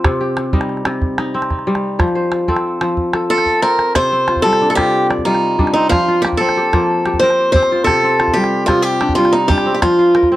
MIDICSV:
0, 0, Header, 1, 4, 480
1, 0, Start_track
1, 0, Tempo, 326264
1, 51, Time_signature, 12, 3, 24, 8
1, 15249, End_track
2, 0, Start_track
2, 0, Title_t, "Steel-string acoustic guitar"
2, 0, Program_c, 0, 25
2, 4855, Note_on_c, 0, 69, 93
2, 5302, Note_off_c, 0, 69, 0
2, 5332, Note_on_c, 0, 70, 97
2, 5811, Note_off_c, 0, 70, 0
2, 5817, Note_on_c, 0, 72, 101
2, 6502, Note_off_c, 0, 72, 0
2, 6508, Note_on_c, 0, 69, 88
2, 6897, Note_off_c, 0, 69, 0
2, 6914, Note_on_c, 0, 69, 70
2, 6989, Note_off_c, 0, 69, 0
2, 6995, Note_on_c, 0, 67, 91
2, 7452, Note_off_c, 0, 67, 0
2, 7725, Note_on_c, 0, 63, 83
2, 8419, Note_off_c, 0, 63, 0
2, 8436, Note_on_c, 0, 63, 75
2, 8664, Note_off_c, 0, 63, 0
2, 8669, Note_on_c, 0, 65, 94
2, 9129, Note_off_c, 0, 65, 0
2, 9145, Note_on_c, 0, 67, 85
2, 9218, Note_off_c, 0, 67, 0
2, 9374, Note_on_c, 0, 69, 86
2, 10537, Note_off_c, 0, 69, 0
2, 10581, Note_on_c, 0, 72, 93
2, 11043, Note_off_c, 0, 72, 0
2, 11061, Note_on_c, 0, 72, 93
2, 11532, Note_off_c, 0, 72, 0
2, 11538, Note_on_c, 0, 69, 92
2, 12260, Note_on_c, 0, 67, 81
2, 12298, Note_off_c, 0, 69, 0
2, 12734, Note_off_c, 0, 67, 0
2, 12740, Note_on_c, 0, 65, 79
2, 12980, Note_off_c, 0, 65, 0
2, 12980, Note_on_c, 0, 67, 85
2, 13457, Note_off_c, 0, 67, 0
2, 13463, Note_on_c, 0, 65, 81
2, 13719, Note_on_c, 0, 63, 80
2, 13725, Note_off_c, 0, 65, 0
2, 13946, Note_on_c, 0, 67, 82
2, 13972, Note_off_c, 0, 63, 0
2, 14318, Note_off_c, 0, 67, 0
2, 14335, Note_on_c, 0, 67, 56
2, 14442, Note_off_c, 0, 67, 0
2, 14448, Note_on_c, 0, 65, 81
2, 15117, Note_off_c, 0, 65, 0
2, 15249, End_track
3, 0, Start_track
3, 0, Title_t, "Kora"
3, 0, Program_c, 1, 46
3, 0, Note_on_c, 1, 60, 73
3, 0, Note_on_c, 1, 65, 73
3, 0, Note_on_c, 1, 69, 63
3, 62, Note_on_c, 1, 48, 80
3, 301, Note_on_c, 1, 67, 61
3, 780, Note_on_c, 1, 55, 72
3, 782, Note_on_c, 1, 63, 64
3, 790, Note_off_c, 1, 69, 0
3, 1248, Note_off_c, 1, 48, 0
3, 1266, Note_on_c, 1, 48, 71
3, 1325, Note_off_c, 1, 65, 0
3, 1734, Note_off_c, 1, 63, 0
3, 1740, Note_on_c, 1, 63, 67
3, 1972, Note_off_c, 1, 60, 0
3, 1978, Note_on_c, 1, 60, 77
3, 2379, Note_off_c, 1, 67, 0
3, 2441, Note_off_c, 1, 55, 0
3, 2459, Note_on_c, 1, 55, 76
3, 2930, Note_on_c, 1, 53, 73
3, 3007, Note_off_c, 1, 48, 0
3, 3007, Note_off_c, 1, 55, 0
3, 3171, Note_on_c, 1, 72, 62
3, 3649, Note_off_c, 1, 60, 0
3, 3655, Note_on_c, 1, 60, 75
3, 3656, Note_on_c, 1, 69, 63
3, 4120, Note_off_c, 1, 53, 0
3, 4126, Note_off_c, 1, 63, 0
3, 4138, Note_on_c, 1, 53, 77
3, 4614, Note_off_c, 1, 69, 0
3, 4620, Note_on_c, 1, 69, 63
3, 4858, Note_on_c, 1, 65, 67
3, 4918, Note_off_c, 1, 72, 0
3, 5331, Note_off_c, 1, 60, 0
3, 5337, Note_on_c, 1, 60, 72
3, 5822, Note_on_c, 1, 48, 70
3, 5890, Note_off_c, 1, 53, 0
3, 6059, Note_off_c, 1, 60, 0
3, 6065, Note_on_c, 1, 60, 54
3, 6297, Note_off_c, 1, 65, 0
3, 6303, Note_on_c, 1, 65, 61
3, 6552, Note_on_c, 1, 55, 74
3, 6558, Note_off_c, 1, 69, 0
3, 6791, Note_on_c, 1, 62, 63
3, 7008, Note_off_c, 1, 48, 0
3, 7021, Note_off_c, 1, 65, 0
3, 7025, Note_on_c, 1, 48, 73
3, 7027, Note_on_c, 1, 65, 60
3, 7503, Note_on_c, 1, 74, 57
3, 7725, Note_off_c, 1, 55, 0
3, 7736, Note_off_c, 1, 65, 0
3, 7742, Note_on_c, 1, 55, 68
3, 7742, Note_on_c, 1, 65, 57
3, 8202, Note_off_c, 1, 55, 0
3, 8214, Note_off_c, 1, 62, 0
3, 8218, Note_on_c, 1, 55, 71
3, 8219, Note_on_c, 1, 62, 62
3, 8456, Note_off_c, 1, 60, 0
3, 8462, Note_on_c, 1, 60, 62
3, 8700, Note_on_c, 1, 53, 75
3, 8771, Note_off_c, 1, 48, 0
3, 8771, Note_off_c, 1, 55, 0
3, 8941, Note_off_c, 1, 65, 0
3, 8947, Note_on_c, 1, 65, 62
3, 9133, Note_off_c, 1, 74, 0
3, 9184, Note_on_c, 1, 58, 62
3, 9414, Note_off_c, 1, 60, 0
3, 9420, Note_on_c, 1, 60, 75
3, 9665, Note_on_c, 1, 67, 63
3, 9882, Note_off_c, 1, 53, 0
3, 9896, Note_off_c, 1, 58, 0
3, 9899, Note_on_c, 1, 53, 74
3, 9902, Note_on_c, 1, 58, 63
3, 10383, Note_off_c, 1, 67, 0
3, 10389, Note_on_c, 1, 67, 58
3, 10619, Note_off_c, 1, 60, 0
3, 10625, Note_on_c, 1, 60, 72
3, 10626, Note_on_c, 1, 70, 64
3, 10690, Note_off_c, 1, 62, 0
3, 11101, Note_off_c, 1, 60, 0
3, 11101, Note_off_c, 1, 67, 0
3, 11106, Note_on_c, 1, 60, 72
3, 11107, Note_on_c, 1, 67, 62
3, 11173, Note_off_c, 1, 65, 0
3, 11355, Note_on_c, 1, 65, 65
3, 11591, Note_on_c, 1, 48, 76
3, 11650, Note_off_c, 1, 53, 0
3, 11815, Note_off_c, 1, 60, 0
3, 11821, Note_on_c, 1, 60, 57
3, 12059, Note_off_c, 1, 65, 0
3, 12065, Note_on_c, 1, 65, 64
3, 12302, Note_on_c, 1, 55, 81
3, 12498, Note_off_c, 1, 70, 0
3, 12740, Note_off_c, 1, 58, 0
3, 12765, Note_off_c, 1, 48, 0
3, 12777, Note_off_c, 1, 65, 0
3, 12782, Note_on_c, 1, 48, 77
3, 12783, Note_on_c, 1, 65, 64
3, 13185, Note_off_c, 1, 67, 0
3, 13263, Note_on_c, 1, 62, 65
3, 13482, Note_off_c, 1, 55, 0
3, 13496, Note_off_c, 1, 65, 0
3, 13499, Note_on_c, 1, 55, 73
3, 13502, Note_on_c, 1, 65, 62
3, 13956, Note_off_c, 1, 55, 0
3, 13969, Note_off_c, 1, 62, 0
3, 13973, Note_on_c, 1, 55, 73
3, 13975, Note_on_c, 1, 62, 60
3, 14200, Note_off_c, 1, 60, 0
3, 14206, Note_on_c, 1, 60, 64
3, 14454, Note_on_c, 1, 53, 71
3, 14524, Note_off_c, 1, 48, 0
3, 14524, Note_off_c, 1, 55, 0
3, 14689, Note_off_c, 1, 65, 0
3, 14695, Note_on_c, 1, 65, 57
3, 14931, Note_on_c, 1, 70, 60
3, 15170, Note_off_c, 1, 60, 0
3, 15176, Note_on_c, 1, 60, 72
3, 15249, Note_off_c, 1, 53, 0
3, 15249, Note_off_c, 1, 60, 0
3, 15249, Note_off_c, 1, 62, 0
3, 15249, Note_off_c, 1, 65, 0
3, 15249, Note_off_c, 1, 70, 0
3, 15249, End_track
4, 0, Start_track
4, 0, Title_t, "Calabash"
4, 64, Note_on_c, 9, 36, 68
4, 64, Note_on_c, 9, 38, 72
4, 211, Note_off_c, 9, 36, 0
4, 211, Note_off_c, 9, 38, 0
4, 540, Note_on_c, 9, 38, 63
4, 687, Note_off_c, 9, 38, 0
4, 779, Note_on_c, 9, 36, 66
4, 896, Note_on_c, 9, 38, 53
4, 926, Note_off_c, 9, 36, 0
4, 1020, Note_off_c, 9, 38, 0
4, 1020, Note_on_c, 9, 38, 21
4, 1137, Note_off_c, 9, 38, 0
4, 1137, Note_on_c, 9, 38, 18
4, 1255, Note_off_c, 9, 38, 0
4, 1255, Note_on_c, 9, 38, 68
4, 1402, Note_off_c, 9, 38, 0
4, 1494, Note_on_c, 9, 36, 59
4, 1642, Note_off_c, 9, 36, 0
4, 1738, Note_on_c, 9, 38, 62
4, 1885, Note_off_c, 9, 38, 0
4, 2092, Note_on_c, 9, 38, 47
4, 2215, Note_off_c, 9, 38, 0
4, 2215, Note_on_c, 9, 36, 62
4, 2215, Note_on_c, 9, 38, 20
4, 2338, Note_off_c, 9, 38, 0
4, 2338, Note_on_c, 9, 38, 18
4, 2362, Note_off_c, 9, 36, 0
4, 2485, Note_off_c, 9, 38, 0
4, 2579, Note_on_c, 9, 38, 47
4, 2726, Note_off_c, 9, 38, 0
4, 2940, Note_on_c, 9, 36, 63
4, 2940, Note_on_c, 9, 38, 64
4, 3061, Note_off_c, 9, 38, 0
4, 3061, Note_on_c, 9, 38, 18
4, 3087, Note_off_c, 9, 36, 0
4, 3208, Note_off_c, 9, 38, 0
4, 3412, Note_on_c, 9, 38, 58
4, 3559, Note_off_c, 9, 38, 0
4, 3653, Note_on_c, 9, 36, 58
4, 3777, Note_on_c, 9, 38, 46
4, 3800, Note_off_c, 9, 36, 0
4, 3925, Note_off_c, 9, 38, 0
4, 4138, Note_on_c, 9, 38, 63
4, 4285, Note_off_c, 9, 38, 0
4, 4372, Note_on_c, 9, 36, 59
4, 4519, Note_off_c, 9, 36, 0
4, 4612, Note_on_c, 9, 38, 64
4, 4759, Note_off_c, 9, 38, 0
4, 4973, Note_on_c, 9, 38, 47
4, 5090, Note_on_c, 9, 36, 36
4, 5120, Note_off_c, 9, 38, 0
4, 5237, Note_off_c, 9, 36, 0
4, 5334, Note_on_c, 9, 38, 43
4, 5481, Note_off_c, 9, 38, 0
4, 5576, Note_on_c, 9, 38, 51
4, 5723, Note_off_c, 9, 38, 0
4, 5815, Note_on_c, 9, 36, 60
4, 5815, Note_on_c, 9, 38, 61
4, 5937, Note_off_c, 9, 38, 0
4, 5937, Note_on_c, 9, 38, 19
4, 5962, Note_off_c, 9, 36, 0
4, 6084, Note_off_c, 9, 38, 0
4, 6296, Note_on_c, 9, 38, 57
4, 6421, Note_on_c, 9, 36, 41
4, 6443, Note_off_c, 9, 38, 0
4, 6569, Note_off_c, 9, 36, 0
4, 6664, Note_on_c, 9, 38, 43
4, 6811, Note_off_c, 9, 38, 0
4, 7025, Note_on_c, 9, 36, 57
4, 7025, Note_on_c, 9, 38, 61
4, 7172, Note_off_c, 9, 36, 0
4, 7172, Note_off_c, 9, 38, 0
4, 7512, Note_on_c, 9, 38, 54
4, 7625, Note_on_c, 9, 36, 40
4, 7660, Note_off_c, 9, 38, 0
4, 7772, Note_off_c, 9, 36, 0
4, 7864, Note_on_c, 9, 38, 45
4, 8011, Note_off_c, 9, 38, 0
4, 8222, Note_on_c, 9, 36, 59
4, 8344, Note_on_c, 9, 38, 41
4, 8370, Note_off_c, 9, 36, 0
4, 8491, Note_off_c, 9, 38, 0
4, 8706, Note_on_c, 9, 36, 60
4, 8706, Note_on_c, 9, 38, 59
4, 8830, Note_off_c, 9, 38, 0
4, 8830, Note_on_c, 9, 38, 17
4, 8854, Note_off_c, 9, 36, 0
4, 8977, Note_off_c, 9, 38, 0
4, 9186, Note_on_c, 9, 38, 58
4, 9304, Note_on_c, 9, 36, 43
4, 9333, Note_off_c, 9, 38, 0
4, 9451, Note_off_c, 9, 36, 0
4, 9543, Note_on_c, 9, 38, 45
4, 9690, Note_off_c, 9, 38, 0
4, 9901, Note_on_c, 9, 36, 59
4, 9901, Note_on_c, 9, 38, 64
4, 10048, Note_off_c, 9, 36, 0
4, 10048, Note_off_c, 9, 38, 0
4, 10377, Note_on_c, 9, 38, 58
4, 10495, Note_on_c, 9, 36, 43
4, 10524, Note_off_c, 9, 38, 0
4, 10642, Note_off_c, 9, 36, 0
4, 10741, Note_on_c, 9, 38, 46
4, 10888, Note_off_c, 9, 38, 0
4, 11094, Note_on_c, 9, 36, 59
4, 11218, Note_on_c, 9, 38, 45
4, 11241, Note_off_c, 9, 36, 0
4, 11365, Note_off_c, 9, 38, 0
4, 11579, Note_on_c, 9, 36, 61
4, 11579, Note_on_c, 9, 38, 64
4, 11700, Note_off_c, 9, 38, 0
4, 11700, Note_on_c, 9, 38, 20
4, 11726, Note_off_c, 9, 36, 0
4, 11847, Note_off_c, 9, 38, 0
4, 12059, Note_on_c, 9, 38, 62
4, 12174, Note_on_c, 9, 36, 47
4, 12206, Note_off_c, 9, 38, 0
4, 12321, Note_off_c, 9, 36, 0
4, 12413, Note_on_c, 9, 38, 44
4, 12561, Note_off_c, 9, 38, 0
4, 12771, Note_on_c, 9, 36, 62
4, 12771, Note_on_c, 9, 38, 64
4, 12918, Note_off_c, 9, 36, 0
4, 12918, Note_off_c, 9, 38, 0
4, 13254, Note_on_c, 9, 38, 65
4, 13375, Note_on_c, 9, 36, 47
4, 13401, Note_off_c, 9, 38, 0
4, 13522, Note_off_c, 9, 36, 0
4, 13608, Note_on_c, 9, 38, 49
4, 13756, Note_off_c, 9, 38, 0
4, 13970, Note_on_c, 9, 36, 66
4, 14090, Note_on_c, 9, 38, 46
4, 14117, Note_off_c, 9, 36, 0
4, 14237, Note_off_c, 9, 38, 0
4, 14451, Note_on_c, 9, 36, 66
4, 14451, Note_on_c, 9, 38, 68
4, 14598, Note_off_c, 9, 36, 0
4, 14598, Note_off_c, 9, 38, 0
4, 14928, Note_on_c, 9, 38, 61
4, 15046, Note_off_c, 9, 38, 0
4, 15046, Note_on_c, 9, 36, 49
4, 15046, Note_on_c, 9, 38, 19
4, 15193, Note_off_c, 9, 36, 0
4, 15193, Note_off_c, 9, 38, 0
4, 15249, End_track
0, 0, End_of_file